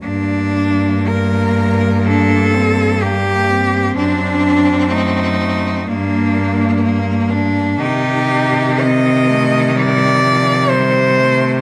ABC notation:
X:1
M:4/4
L:1/8
Q:1/4=63
K:Gm
V:1 name="Cello"
D2 B2 A2 G2 | D2 E2 D3 z | G2 e2 d2 c2 |]
V:2 name="Cello"
z4 D C B, C | D2 A,2 B,2 B, D | E2 C A, G, F, G, A, |]
V:3 name="Cello"
B,8 | C4 B,4 | E,8 |]
V:4 name="Cello" clef=bass
G,,8 | ^F,,4 G,,4 | C,8 |]